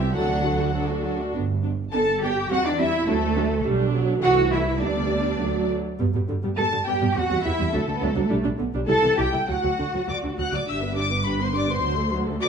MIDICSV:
0, 0, Header, 1, 6, 480
1, 0, Start_track
1, 0, Key_signature, 1, "major"
1, 0, Tempo, 598205
1, 108, Time_signature, 2, 2, 24, 8
1, 1547, Tempo, 579710
1, 7307, Tempo, 589391
1, 10240, End_track
2, 0, Start_track
2, 0, Title_t, "Violin section"
2, 0, Program_c, 0, 48
2, 110, Note_on_c, 0, 78, 70
2, 586, Note_off_c, 0, 78, 0
2, 1539, Note_on_c, 0, 81, 71
2, 1766, Note_off_c, 0, 81, 0
2, 1788, Note_on_c, 0, 79, 49
2, 2022, Note_off_c, 0, 79, 0
2, 2027, Note_on_c, 0, 78, 73
2, 2074, Note_off_c, 0, 78, 0
2, 2138, Note_on_c, 0, 74, 67
2, 2254, Note_on_c, 0, 76, 70
2, 2258, Note_off_c, 0, 74, 0
2, 2497, Note_off_c, 0, 76, 0
2, 2499, Note_on_c, 0, 69, 65
2, 2965, Note_off_c, 0, 69, 0
2, 3452, Note_on_c, 0, 78, 78
2, 3518, Note_off_c, 0, 78, 0
2, 3702, Note_on_c, 0, 76, 50
2, 3939, Note_off_c, 0, 76, 0
2, 3941, Note_on_c, 0, 74, 55
2, 4673, Note_off_c, 0, 74, 0
2, 5395, Note_on_c, 0, 81, 75
2, 5621, Note_off_c, 0, 81, 0
2, 5636, Note_on_c, 0, 79, 55
2, 5872, Note_on_c, 0, 78, 63
2, 5873, Note_off_c, 0, 79, 0
2, 6108, Note_on_c, 0, 76, 65
2, 6115, Note_off_c, 0, 78, 0
2, 6348, Note_on_c, 0, 69, 62
2, 6351, Note_off_c, 0, 76, 0
2, 6825, Note_off_c, 0, 69, 0
2, 7307, Note_on_c, 0, 81, 71
2, 7531, Note_off_c, 0, 81, 0
2, 7547, Note_on_c, 0, 79, 59
2, 7792, Note_off_c, 0, 79, 0
2, 7798, Note_on_c, 0, 78, 48
2, 8285, Note_off_c, 0, 78, 0
2, 8287, Note_on_c, 0, 86, 62
2, 8352, Note_off_c, 0, 86, 0
2, 8529, Note_on_c, 0, 90, 53
2, 8645, Note_off_c, 0, 90, 0
2, 8651, Note_on_c, 0, 86, 60
2, 8768, Note_off_c, 0, 86, 0
2, 8768, Note_on_c, 0, 88, 63
2, 8833, Note_off_c, 0, 88, 0
2, 9007, Note_on_c, 0, 86, 66
2, 9238, Note_off_c, 0, 86, 0
2, 9243, Note_on_c, 0, 83, 66
2, 9360, Note_off_c, 0, 83, 0
2, 9366, Note_on_c, 0, 84, 60
2, 9478, Note_on_c, 0, 86, 58
2, 9480, Note_off_c, 0, 84, 0
2, 9595, Note_off_c, 0, 86, 0
2, 9595, Note_on_c, 0, 84, 68
2, 9950, Note_off_c, 0, 84, 0
2, 10185, Note_on_c, 0, 86, 79
2, 10240, Note_off_c, 0, 86, 0
2, 10240, End_track
3, 0, Start_track
3, 0, Title_t, "Violin section"
3, 0, Program_c, 1, 48
3, 0, Note_on_c, 1, 67, 51
3, 0, Note_on_c, 1, 76, 51
3, 111, Note_off_c, 1, 76, 0
3, 112, Note_off_c, 1, 67, 0
3, 116, Note_on_c, 1, 69, 58
3, 120, Note_on_c, 1, 66, 58
3, 217, Note_off_c, 1, 66, 0
3, 226, Note_off_c, 1, 69, 0
3, 226, Note_on_c, 1, 62, 53
3, 227, Note_on_c, 1, 66, 51
3, 343, Note_off_c, 1, 66, 0
3, 350, Note_off_c, 1, 62, 0
3, 353, Note_on_c, 1, 66, 52
3, 353, Note_on_c, 1, 69, 52
3, 464, Note_off_c, 1, 66, 0
3, 472, Note_on_c, 1, 62, 56
3, 474, Note_off_c, 1, 69, 0
3, 474, Note_on_c, 1, 66, 50
3, 582, Note_off_c, 1, 66, 0
3, 592, Note_on_c, 1, 66, 48
3, 592, Note_on_c, 1, 69, 55
3, 594, Note_off_c, 1, 62, 0
3, 701, Note_off_c, 1, 66, 0
3, 706, Note_off_c, 1, 69, 0
3, 710, Note_on_c, 1, 66, 46
3, 712, Note_on_c, 1, 62, 45
3, 820, Note_off_c, 1, 66, 0
3, 826, Note_on_c, 1, 69, 52
3, 830, Note_on_c, 1, 66, 48
3, 835, Note_off_c, 1, 62, 0
3, 938, Note_off_c, 1, 66, 0
3, 945, Note_on_c, 1, 62, 44
3, 948, Note_on_c, 1, 66, 48
3, 952, Note_off_c, 1, 69, 0
3, 1071, Note_off_c, 1, 62, 0
3, 1072, Note_off_c, 1, 66, 0
3, 1541, Note_on_c, 1, 81, 75
3, 1607, Note_off_c, 1, 81, 0
3, 1788, Note_on_c, 1, 79, 63
3, 2022, Note_off_c, 1, 79, 0
3, 2023, Note_on_c, 1, 78, 88
3, 2141, Note_off_c, 1, 78, 0
3, 2141, Note_on_c, 1, 74, 63
3, 2189, Note_off_c, 1, 74, 0
3, 2263, Note_on_c, 1, 76, 71
3, 2496, Note_off_c, 1, 76, 0
3, 2498, Note_on_c, 1, 69, 70
3, 2965, Note_off_c, 1, 69, 0
3, 3453, Note_on_c, 1, 78, 79
3, 3519, Note_off_c, 1, 78, 0
3, 3694, Note_on_c, 1, 76, 56
3, 3760, Note_off_c, 1, 76, 0
3, 3937, Note_on_c, 1, 74, 65
3, 4656, Note_off_c, 1, 74, 0
3, 5394, Note_on_c, 1, 81, 69
3, 5620, Note_off_c, 1, 81, 0
3, 5633, Note_on_c, 1, 79, 59
3, 5876, Note_off_c, 1, 79, 0
3, 5883, Note_on_c, 1, 78, 73
3, 6113, Note_on_c, 1, 76, 71
3, 6115, Note_off_c, 1, 78, 0
3, 6353, Note_off_c, 1, 76, 0
3, 6356, Note_on_c, 1, 69, 62
3, 6829, Note_off_c, 1, 69, 0
3, 7310, Note_on_c, 1, 81, 71
3, 7532, Note_off_c, 1, 81, 0
3, 7546, Note_on_c, 1, 79, 62
3, 7787, Note_off_c, 1, 79, 0
3, 7796, Note_on_c, 1, 78, 59
3, 8274, Note_off_c, 1, 78, 0
3, 8283, Note_on_c, 1, 74, 51
3, 8349, Note_off_c, 1, 74, 0
3, 8534, Note_on_c, 1, 78, 51
3, 8648, Note_off_c, 1, 78, 0
3, 8652, Note_on_c, 1, 74, 50
3, 8768, Note_off_c, 1, 74, 0
3, 8770, Note_on_c, 1, 76, 65
3, 9001, Note_off_c, 1, 76, 0
3, 9007, Note_on_c, 1, 74, 53
3, 9072, Note_off_c, 1, 74, 0
3, 9246, Note_on_c, 1, 71, 58
3, 9359, Note_off_c, 1, 71, 0
3, 9365, Note_on_c, 1, 72, 52
3, 9411, Note_off_c, 1, 72, 0
3, 9483, Note_on_c, 1, 74, 59
3, 9596, Note_off_c, 1, 74, 0
3, 9603, Note_on_c, 1, 72, 52
3, 9947, Note_off_c, 1, 72, 0
3, 10186, Note_on_c, 1, 74, 65
3, 10240, Note_off_c, 1, 74, 0
3, 10240, End_track
4, 0, Start_track
4, 0, Title_t, "Cello section"
4, 0, Program_c, 2, 48
4, 0, Note_on_c, 2, 55, 62
4, 107, Note_off_c, 2, 55, 0
4, 114, Note_on_c, 2, 54, 66
4, 598, Note_off_c, 2, 54, 0
4, 1553, Note_on_c, 2, 69, 86
4, 1774, Note_off_c, 2, 69, 0
4, 1791, Note_on_c, 2, 67, 78
4, 2027, Note_on_c, 2, 66, 95
4, 2028, Note_off_c, 2, 67, 0
4, 2146, Note_off_c, 2, 66, 0
4, 2147, Note_on_c, 2, 62, 82
4, 2265, Note_off_c, 2, 62, 0
4, 2267, Note_on_c, 2, 64, 88
4, 2503, Note_off_c, 2, 64, 0
4, 2503, Note_on_c, 2, 57, 93
4, 2977, Note_off_c, 2, 57, 0
4, 3455, Note_on_c, 2, 66, 109
4, 3680, Note_off_c, 2, 66, 0
4, 3693, Note_on_c, 2, 64, 81
4, 3939, Note_off_c, 2, 64, 0
4, 3942, Note_on_c, 2, 62, 68
4, 4673, Note_off_c, 2, 62, 0
4, 5393, Note_on_c, 2, 69, 87
4, 5460, Note_off_c, 2, 69, 0
4, 5639, Note_on_c, 2, 67, 74
4, 5874, Note_off_c, 2, 67, 0
4, 5877, Note_on_c, 2, 66, 85
4, 6117, Note_off_c, 2, 66, 0
4, 6122, Note_on_c, 2, 64, 73
4, 6353, Note_off_c, 2, 64, 0
4, 6357, Note_on_c, 2, 57, 73
4, 6423, Note_off_c, 2, 57, 0
4, 6529, Note_on_c, 2, 59, 63
4, 6605, Note_off_c, 2, 59, 0
4, 6605, Note_on_c, 2, 57, 63
4, 6675, Note_on_c, 2, 55, 64
4, 6680, Note_off_c, 2, 57, 0
4, 6751, Note_on_c, 2, 57, 66
4, 6752, Note_off_c, 2, 55, 0
4, 6827, Note_off_c, 2, 57, 0
4, 7309, Note_on_c, 2, 69, 98
4, 7532, Note_off_c, 2, 69, 0
4, 7546, Note_on_c, 2, 67, 69
4, 7611, Note_off_c, 2, 67, 0
4, 7796, Note_on_c, 2, 66, 65
4, 8511, Note_off_c, 2, 66, 0
4, 8765, Note_on_c, 2, 43, 53
4, 9681, Note_off_c, 2, 43, 0
4, 9710, Note_on_c, 2, 38, 62
4, 10240, Note_off_c, 2, 38, 0
4, 10240, End_track
5, 0, Start_track
5, 0, Title_t, "Viola section"
5, 0, Program_c, 3, 48
5, 0, Note_on_c, 3, 52, 53
5, 0, Note_on_c, 3, 60, 52
5, 102, Note_on_c, 3, 54, 56
5, 106, Note_on_c, 3, 62, 61
5, 107, Note_off_c, 3, 52, 0
5, 108, Note_off_c, 3, 60, 0
5, 219, Note_off_c, 3, 54, 0
5, 221, Note_off_c, 3, 62, 0
5, 224, Note_on_c, 3, 66, 54
5, 225, Note_on_c, 3, 57, 53
5, 349, Note_off_c, 3, 66, 0
5, 350, Note_off_c, 3, 57, 0
5, 350, Note_on_c, 3, 54, 52
5, 352, Note_on_c, 3, 62, 49
5, 473, Note_off_c, 3, 54, 0
5, 474, Note_off_c, 3, 62, 0
5, 476, Note_on_c, 3, 66, 52
5, 478, Note_on_c, 3, 57, 47
5, 596, Note_off_c, 3, 66, 0
5, 597, Note_off_c, 3, 57, 0
5, 600, Note_on_c, 3, 62, 54
5, 601, Note_on_c, 3, 54, 51
5, 710, Note_off_c, 3, 62, 0
5, 711, Note_off_c, 3, 54, 0
5, 722, Note_on_c, 3, 66, 49
5, 723, Note_on_c, 3, 57, 50
5, 837, Note_on_c, 3, 62, 54
5, 839, Note_on_c, 3, 54, 49
5, 840, Note_off_c, 3, 66, 0
5, 841, Note_off_c, 3, 57, 0
5, 956, Note_on_c, 3, 57, 46
5, 958, Note_off_c, 3, 62, 0
5, 959, Note_off_c, 3, 54, 0
5, 960, Note_on_c, 3, 66, 51
5, 1076, Note_off_c, 3, 57, 0
5, 1078, Note_off_c, 3, 66, 0
5, 1081, Note_on_c, 3, 62, 58
5, 1082, Note_on_c, 3, 59, 54
5, 1145, Note_off_c, 3, 62, 0
5, 1146, Note_off_c, 3, 59, 0
5, 1310, Note_on_c, 3, 59, 44
5, 1310, Note_on_c, 3, 62, 48
5, 1374, Note_off_c, 3, 59, 0
5, 1375, Note_off_c, 3, 62, 0
5, 1552, Note_on_c, 3, 62, 51
5, 1554, Note_on_c, 3, 59, 51
5, 1619, Note_off_c, 3, 62, 0
5, 1621, Note_off_c, 3, 59, 0
5, 1789, Note_on_c, 3, 62, 50
5, 1790, Note_on_c, 3, 59, 52
5, 1855, Note_off_c, 3, 62, 0
5, 1856, Note_off_c, 3, 59, 0
5, 2027, Note_on_c, 3, 55, 58
5, 2027, Note_on_c, 3, 60, 61
5, 2093, Note_off_c, 3, 55, 0
5, 2093, Note_off_c, 3, 60, 0
5, 2257, Note_on_c, 3, 55, 55
5, 2259, Note_on_c, 3, 60, 54
5, 2324, Note_off_c, 3, 55, 0
5, 2325, Note_off_c, 3, 60, 0
5, 2496, Note_on_c, 3, 62, 63
5, 2497, Note_on_c, 3, 54, 64
5, 2562, Note_off_c, 3, 62, 0
5, 2563, Note_off_c, 3, 54, 0
5, 2735, Note_on_c, 3, 54, 68
5, 2737, Note_on_c, 3, 62, 62
5, 2802, Note_off_c, 3, 54, 0
5, 2803, Note_off_c, 3, 62, 0
5, 2967, Note_on_c, 3, 62, 71
5, 2968, Note_on_c, 3, 55, 74
5, 3194, Note_off_c, 3, 55, 0
5, 3209, Note_on_c, 3, 54, 73
5, 3417, Note_off_c, 3, 62, 0
5, 3447, Note_off_c, 3, 54, 0
5, 3451, Note_on_c, 3, 52, 62
5, 3451, Note_on_c, 3, 57, 63
5, 3929, Note_off_c, 3, 52, 0
5, 3939, Note_off_c, 3, 57, 0
5, 3939, Note_on_c, 3, 55, 55
5, 3942, Note_on_c, 3, 59, 52
5, 4417, Note_off_c, 3, 55, 0
5, 4422, Note_on_c, 3, 54, 49
5, 4426, Note_on_c, 3, 57, 50
5, 4429, Note_off_c, 3, 59, 0
5, 4747, Note_off_c, 3, 54, 0
5, 4749, Note_off_c, 3, 57, 0
5, 4917, Note_on_c, 3, 55, 57
5, 4918, Note_on_c, 3, 59, 60
5, 4966, Note_off_c, 3, 55, 0
5, 4967, Note_off_c, 3, 59, 0
5, 5039, Note_on_c, 3, 59, 44
5, 5041, Note_on_c, 3, 55, 43
5, 5087, Note_off_c, 3, 59, 0
5, 5089, Note_off_c, 3, 55, 0
5, 5156, Note_on_c, 3, 50, 47
5, 5160, Note_on_c, 3, 55, 42
5, 5205, Note_off_c, 3, 50, 0
5, 5208, Note_off_c, 3, 55, 0
5, 5274, Note_on_c, 3, 55, 64
5, 5276, Note_on_c, 3, 59, 63
5, 5324, Note_off_c, 3, 55, 0
5, 5325, Note_off_c, 3, 59, 0
5, 5403, Note_on_c, 3, 55, 50
5, 5404, Note_on_c, 3, 59, 48
5, 5450, Note_off_c, 3, 55, 0
5, 5451, Note_off_c, 3, 59, 0
5, 5520, Note_on_c, 3, 50, 50
5, 5522, Note_on_c, 3, 55, 53
5, 5568, Note_off_c, 3, 50, 0
5, 5569, Note_off_c, 3, 55, 0
5, 5640, Note_on_c, 3, 59, 75
5, 5641, Note_on_c, 3, 55, 70
5, 5688, Note_off_c, 3, 59, 0
5, 5689, Note_off_c, 3, 55, 0
5, 5758, Note_on_c, 3, 55, 53
5, 5760, Note_on_c, 3, 59, 56
5, 5807, Note_off_c, 3, 55, 0
5, 5808, Note_off_c, 3, 59, 0
5, 5878, Note_on_c, 3, 55, 60
5, 5881, Note_on_c, 3, 60, 57
5, 5926, Note_off_c, 3, 55, 0
5, 5929, Note_off_c, 3, 60, 0
5, 5995, Note_on_c, 3, 60, 56
5, 5997, Note_on_c, 3, 55, 56
5, 6044, Note_off_c, 3, 60, 0
5, 6045, Note_off_c, 3, 55, 0
5, 6118, Note_on_c, 3, 52, 49
5, 6118, Note_on_c, 3, 55, 52
5, 6165, Note_off_c, 3, 52, 0
5, 6165, Note_off_c, 3, 55, 0
5, 6234, Note_on_c, 3, 55, 67
5, 6234, Note_on_c, 3, 60, 71
5, 6282, Note_off_c, 3, 55, 0
5, 6282, Note_off_c, 3, 60, 0
5, 6356, Note_on_c, 3, 54, 55
5, 6356, Note_on_c, 3, 62, 48
5, 6403, Note_off_c, 3, 54, 0
5, 6403, Note_off_c, 3, 62, 0
5, 6469, Note_on_c, 3, 57, 56
5, 6472, Note_on_c, 3, 50, 53
5, 6517, Note_off_c, 3, 57, 0
5, 6519, Note_off_c, 3, 50, 0
5, 6588, Note_on_c, 3, 62, 74
5, 6590, Note_on_c, 3, 54, 74
5, 6636, Note_off_c, 3, 62, 0
5, 6638, Note_off_c, 3, 54, 0
5, 6706, Note_on_c, 3, 62, 61
5, 6707, Note_on_c, 3, 54, 63
5, 6754, Note_off_c, 3, 62, 0
5, 6755, Note_off_c, 3, 54, 0
5, 6822, Note_on_c, 3, 55, 84
5, 6824, Note_on_c, 3, 62, 81
5, 6871, Note_off_c, 3, 55, 0
5, 6872, Note_off_c, 3, 62, 0
5, 6939, Note_on_c, 3, 62, 54
5, 6940, Note_on_c, 3, 55, 53
5, 6989, Note_off_c, 3, 62, 0
5, 6990, Note_off_c, 3, 55, 0
5, 7061, Note_on_c, 3, 59, 56
5, 7062, Note_on_c, 3, 50, 50
5, 7110, Note_off_c, 3, 59, 0
5, 7111, Note_off_c, 3, 50, 0
5, 7186, Note_on_c, 3, 62, 67
5, 7187, Note_on_c, 3, 55, 73
5, 7234, Note_off_c, 3, 62, 0
5, 7236, Note_off_c, 3, 55, 0
5, 7302, Note_on_c, 3, 55, 56
5, 7304, Note_on_c, 3, 64, 57
5, 7351, Note_off_c, 3, 55, 0
5, 7353, Note_off_c, 3, 64, 0
5, 7419, Note_on_c, 3, 60, 60
5, 7421, Note_on_c, 3, 52, 54
5, 7469, Note_off_c, 3, 60, 0
5, 7471, Note_off_c, 3, 52, 0
5, 7546, Note_on_c, 3, 64, 76
5, 7549, Note_on_c, 3, 55, 63
5, 7595, Note_off_c, 3, 64, 0
5, 7597, Note_off_c, 3, 55, 0
5, 7667, Note_on_c, 3, 55, 52
5, 7670, Note_on_c, 3, 64, 50
5, 7716, Note_off_c, 3, 55, 0
5, 7719, Note_off_c, 3, 64, 0
5, 7789, Note_on_c, 3, 54, 56
5, 7789, Note_on_c, 3, 66, 57
5, 7839, Note_off_c, 3, 54, 0
5, 7839, Note_off_c, 3, 66, 0
5, 7915, Note_on_c, 3, 66, 41
5, 7917, Note_on_c, 3, 54, 45
5, 7964, Note_off_c, 3, 66, 0
5, 7965, Note_off_c, 3, 54, 0
5, 8040, Note_on_c, 3, 50, 42
5, 8042, Note_on_c, 3, 62, 37
5, 8088, Note_off_c, 3, 50, 0
5, 8090, Note_off_c, 3, 62, 0
5, 8162, Note_on_c, 3, 66, 54
5, 8164, Note_on_c, 3, 54, 60
5, 8210, Note_off_c, 3, 66, 0
5, 8212, Note_off_c, 3, 54, 0
5, 8285, Note_on_c, 3, 54, 44
5, 8285, Note_on_c, 3, 66, 35
5, 8333, Note_off_c, 3, 54, 0
5, 8333, Note_off_c, 3, 66, 0
5, 8404, Note_on_c, 3, 62, 40
5, 8405, Note_on_c, 3, 50, 42
5, 8453, Note_off_c, 3, 50, 0
5, 8453, Note_off_c, 3, 62, 0
5, 8525, Note_on_c, 3, 54, 53
5, 8525, Note_on_c, 3, 66, 54
5, 8573, Note_off_c, 3, 54, 0
5, 8573, Note_off_c, 3, 66, 0
5, 8641, Note_on_c, 3, 54, 40
5, 8642, Note_on_c, 3, 66, 44
5, 8689, Note_off_c, 3, 54, 0
5, 8690, Note_off_c, 3, 66, 0
5, 8760, Note_on_c, 3, 67, 49
5, 8764, Note_on_c, 3, 62, 46
5, 8873, Note_off_c, 3, 67, 0
5, 8875, Note_off_c, 3, 62, 0
5, 8883, Note_on_c, 3, 59, 41
5, 8886, Note_on_c, 3, 71, 44
5, 8995, Note_on_c, 3, 67, 42
5, 8997, Note_on_c, 3, 62, 43
5, 9003, Note_off_c, 3, 59, 0
5, 9004, Note_off_c, 3, 71, 0
5, 9118, Note_off_c, 3, 67, 0
5, 9118, Note_on_c, 3, 59, 41
5, 9119, Note_off_c, 3, 62, 0
5, 9122, Note_on_c, 3, 71, 45
5, 9239, Note_off_c, 3, 59, 0
5, 9240, Note_on_c, 3, 62, 43
5, 9241, Note_off_c, 3, 71, 0
5, 9242, Note_on_c, 3, 67, 44
5, 9350, Note_off_c, 3, 62, 0
5, 9351, Note_off_c, 3, 67, 0
5, 9358, Note_on_c, 3, 71, 45
5, 9361, Note_on_c, 3, 59, 44
5, 9473, Note_on_c, 3, 67, 49
5, 9474, Note_on_c, 3, 62, 47
5, 9477, Note_off_c, 3, 71, 0
5, 9478, Note_off_c, 3, 59, 0
5, 9590, Note_on_c, 3, 71, 46
5, 9591, Note_on_c, 3, 59, 44
5, 9593, Note_off_c, 3, 62, 0
5, 9593, Note_off_c, 3, 67, 0
5, 9708, Note_on_c, 3, 54, 55
5, 9709, Note_on_c, 3, 66, 46
5, 9711, Note_off_c, 3, 59, 0
5, 9711, Note_off_c, 3, 71, 0
5, 9820, Note_off_c, 3, 54, 0
5, 9821, Note_off_c, 3, 66, 0
5, 9824, Note_on_c, 3, 69, 46
5, 9826, Note_on_c, 3, 57, 51
5, 9941, Note_on_c, 3, 54, 48
5, 9942, Note_on_c, 3, 66, 51
5, 9947, Note_off_c, 3, 69, 0
5, 9948, Note_off_c, 3, 57, 0
5, 10058, Note_on_c, 3, 57, 51
5, 10060, Note_on_c, 3, 69, 46
5, 10064, Note_off_c, 3, 54, 0
5, 10065, Note_off_c, 3, 66, 0
5, 10178, Note_on_c, 3, 66, 52
5, 10181, Note_on_c, 3, 54, 49
5, 10182, Note_off_c, 3, 57, 0
5, 10183, Note_off_c, 3, 69, 0
5, 10240, Note_off_c, 3, 54, 0
5, 10240, Note_off_c, 3, 66, 0
5, 10240, End_track
6, 0, Start_track
6, 0, Title_t, "Double bass section"
6, 0, Program_c, 4, 48
6, 0, Note_on_c, 4, 36, 75
6, 101, Note_off_c, 4, 36, 0
6, 112, Note_on_c, 4, 38, 65
6, 915, Note_off_c, 4, 38, 0
6, 1079, Note_on_c, 4, 31, 64
6, 1492, Note_off_c, 4, 31, 0
6, 1548, Note_on_c, 4, 31, 58
6, 1970, Note_off_c, 4, 31, 0
6, 2027, Note_on_c, 4, 40, 70
6, 2446, Note_off_c, 4, 40, 0
6, 2501, Note_on_c, 4, 38, 75
6, 2920, Note_off_c, 4, 38, 0
6, 2975, Note_on_c, 4, 35, 75
6, 3421, Note_off_c, 4, 35, 0
6, 3458, Note_on_c, 4, 36, 66
6, 3942, Note_off_c, 4, 36, 0
6, 3945, Note_on_c, 4, 38, 58
6, 4422, Note_off_c, 4, 38, 0
6, 4432, Note_on_c, 4, 38, 49
6, 4745, Note_off_c, 4, 38, 0
6, 4914, Note_on_c, 4, 43, 66
6, 4963, Note_off_c, 4, 43, 0
6, 5037, Note_on_c, 4, 43, 51
6, 5086, Note_off_c, 4, 43, 0
6, 5158, Note_on_c, 4, 43, 46
6, 5207, Note_off_c, 4, 43, 0
6, 5283, Note_on_c, 4, 43, 63
6, 5331, Note_off_c, 4, 43, 0
6, 5402, Note_on_c, 4, 43, 44
6, 5450, Note_off_c, 4, 43, 0
6, 5529, Note_on_c, 4, 43, 48
6, 5575, Note_off_c, 4, 43, 0
6, 5640, Note_on_c, 4, 43, 68
6, 5688, Note_off_c, 4, 43, 0
6, 5764, Note_on_c, 4, 43, 49
6, 5811, Note_off_c, 4, 43, 0
6, 5882, Note_on_c, 4, 40, 64
6, 5930, Note_off_c, 4, 40, 0
6, 6003, Note_on_c, 4, 40, 52
6, 6050, Note_off_c, 4, 40, 0
6, 6125, Note_on_c, 4, 40, 48
6, 6171, Note_off_c, 4, 40, 0
6, 6243, Note_on_c, 4, 40, 69
6, 6289, Note_off_c, 4, 40, 0
6, 6362, Note_on_c, 4, 38, 46
6, 6408, Note_off_c, 4, 38, 0
6, 6478, Note_on_c, 4, 38, 60
6, 6524, Note_off_c, 4, 38, 0
6, 6599, Note_on_c, 4, 38, 75
6, 6645, Note_off_c, 4, 38, 0
6, 6713, Note_on_c, 4, 38, 53
6, 6760, Note_off_c, 4, 38, 0
6, 6830, Note_on_c, 4, 35, 74
6, 6877, Note_off_c, 4, 35, 0
6, 6955, Note_on_c, 4, 35, 57
6, 7001, Note_off_c, 4, 35, 0
6, 7071, Note_on_c, 4, 35, 58
6, 7118, Note_off_c, 4, 35, 0
6, 7191, Note_on_c, 4, 35, 77
6, 7238, Note_off_c, 4, 35, 0
6, 7314, Note_on_c, 4, 36, 47
6, 7360, Note_off_c, 4, 36, 0
6, 7429, Note_on_c, 4, 36, 57
6, 7477, Note_off_c, 4, 36, 0
6, 7553, Note_on_c, 4, 36, 65
6, 7600, Note_off_c, 4, 36, 0
6, 7680, Note_on_c, 4, 36, 41
6, 7727, Note_off_c, 4, 36, 0
6, 7802, Note_on_c, 4, 38, 61
6, 7850, Note_off_c, 4, 38, 0
6, 7920, Note_on_c, 4, 38, 44
6, 7968, Note_off_c, 4, 38, 0
6, 8049, Note_on_c, 4, 38, 39
6, 8095, Note_off_c, 4, 38, 0
6, 8163, Note_on_c, 4, 38, 59
6, 8211, Note_off_c, 4, 38, 0
6, 8291, Note_on_c, 4, 38, 38
6, 8338, Note_off_c, 4, 38, 0
6, 8410, Note_on_c, 4, 38, 42
6, 8457, Note_off_c, 4, 38, 0
6, 8529, Note_on_c, 4, 38, 57
6, 8576, Note_off_c, 4, 38, 0
6, 8648, Note_on_c, 4, 38, 36
6, 8695, Note_off_c, 4, 38, 0
6, 8773, Note_on_c, 4, 31, 51
6, 9685, Note_off_c, 4, 31, 0
6, 9713, Note_on_c, 4, 38, 61
6, 10240, Note_off_c, 4, 38, 0
6, 10240, End_track
0, 0, End_of_file